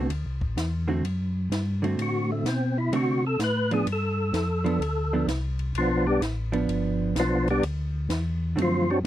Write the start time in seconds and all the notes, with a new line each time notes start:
0.09 D2, ride
0.26 C2
0.41 A1, kick
0.56 E2, snare, hi-hat pedal, ride
0.88 D3 A3 C4 F#4
1.03 F#2, ride
1.50 G2, snare, hi-hat pedal, ride
1.82 D3 A3 C4 F#4, ride
1.97 A2, ride
2.02 F#4
2.32 A3
2.44 B2, snare, hi-hat pedal, ride
2.48 C4
2.78 E4
2.91 C3 D3 A3 C4 F#4, ride
2.96 F#4
3.27 A4
3.39 A2, snare, hi-hat pedal, ride
3.44 B4
3.71 F3 B3 D4 G#4, ride
3.86 G2, ride
3.92 A4
4.33 F2, snare, hi-hat pedal, ride
4.64 F3 B3 D4, ride
4.79 D2, ride
5.13 F3 B3 D4
5.26 C2, snare, hi-hat pedal, ride
5.59 ride
5.73 B1, ride
5.78 F3 B3 D4 F4
6.06 G3 B3 D4 G4
6.21 A1, snare, hi-hat pedal, ride
6.52 F3 B3 D4, ride
6.67 G1, ride
7.15 B1, snare, hi-hat pedal, ride
7.20 F3 B3 D4 F4
7.48 G3 B3 D4 G4, ride
7.62 D2, ride
8.09 E2, snare, hi-hat pedal, ride
8.56 F#2 D3 A3 C4 F#4, ride
8.62 F3 F4
8.90 F#3 C4 D4 F#4
9.04 A2